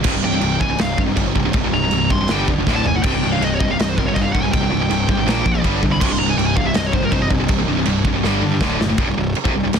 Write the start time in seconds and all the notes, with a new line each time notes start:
Already playing: G3
0.04 C1 C2 G2 C3 C4 D#4, kick, china, crash
0.15 C2 G2
0.23 C1 C2 G2 C3 G5
0.34 C2 G2
0.41 C1 C2 G2 C3, china
0.60 C1 C2 G2 C3 G#5, kick
0.70 C2 G2
0.78 C1 C2 G2 C3 F5, snare, china
0.98 G1 C2 G2 C3, kick
1.08 C2 G2
1.17 G1 C2 G2 C3, kick, china
1.35 C1 C2 G2 C3, kick
1.45 C2 G2
1.53 C1 C2 G2 C3, kick, china
1.65 C2 G2
1.72 C1 G2 C3 A#5
1.76 C2
1.84 C2 G2
1.91 C1 C2 C3, china
1.95 G2
2.10 C1 C2 G2 C3 C6, kick
2.21 C2 G2
2.28 G1 G2 D4 G4 G5, snare, china
2.32 D3 G3
2.48 F1 G2 D3 G3, kick
2.59 G2 D3
2.67 D1 D2 A2 D3 A3 E4 D5, kick, snare
2.71 D3
2.76 A5
2.85 F#1 D2 A2 D3 G#5, floor tom
2.96 D2 A2 F#5
3.03 C1 C2 C4 D#4 G5, kick, crash, china
3.07 G2 C3 G3
3.15 C2 G2
3.21 C1 C2 G2 C3
3.33 C2 G2 F5
3.40 C1 C2 G2 C3, china
3.44 D#5
3.55 C#5
3.60 C1 C2 G2 C3 D#5, kick
3.72 C2 G2 F5
3.77 C1 C2 G2, snare, china
3.81 C3 D#5
3.89 C5
3.97 G1 C2 G2 C3 A#4, kick
4.07 C2 G2 C#5
4.15 G1 C2 G2 C3 D#5, kick, china
4.21 F5
4.33 C1 C2 G2 C3 F#5, kick
4.43 C2 G2 G#5
4.52 C1 C2 G2 C3 G5, kick, china
4.63 C2 G2
4.71 C1 C2 G2 C3
4.82 C2 G2
4.90 C1 C2 G2 C3, china
5.08 G#1 C2 G2 C3, kick
5.19 C2 G2
5.26 A#1 A#2 F3 A#3 F4, snare, china
5.46 A#1 A#2 F3 A#3, kick
5.55 A#2 F3
5.62 G1 G2 D3 G3 D4, kick, china
5.81 C2 G2 D3 G3, kick
5.92 G2 D3 B5
6.00 C1 C2 G2 C3 C4 D#4 C6, kick, china, crash
6.04 C3 C#6
6.10 C2 G2 C6
6.18 C1 C2 G2 C3 A#5
6.29 C2 G2 G#5
6.36 C1 C2 G2 C3 G5, china
6.40 G2
6.46 G#5
6.56 C1 C2 G2 C3 F5, kick
6.65 C2 G2 E5
6.74 C1 C2 G2 C3 D#5, snare, china
6.86 C#5
6.93 G1 C2 G2 C3 C5, kick
7.03 C2 G2 A#4
7.12 G1 C2 G2 C3 C5, kick, china
7.22 D#5
7.30 C1 C2 G2 C3, kick
7.40 C2 G2
7.48 C1 C2 G2 C3, kick, china
7.60 C2 G2
7.68 C1 C2 G2 C3
7.79 C2 G2
7.85 C1 C2 G2 C3, china
8.05 C1 C2 G2 C3, kick
8.16 C2 G2
8.23 G1 G2 D3 G3 D4, snare
8.42 G2 D3 G3
8.54 G2 D3
8.60 D1 D2 A2 D3 A3 E4 D5, kick, snare
8.79 F#1 D2 A2 D3, snare
8.90 D2 A2
8.98 C1 C2 G2 C3 G3 C4 D#4, kick, china
9.07 C1 C2 G2
9.16 C1 C2 G2
9.35 muted picked electric bass stroke, muted distorted electric guitar stroke, china
9.44 F1 F2 C3, kick
9.53 C1 C2 G2
9.63 C1 C2 G2
9.71 C1 C2 G2, snare, china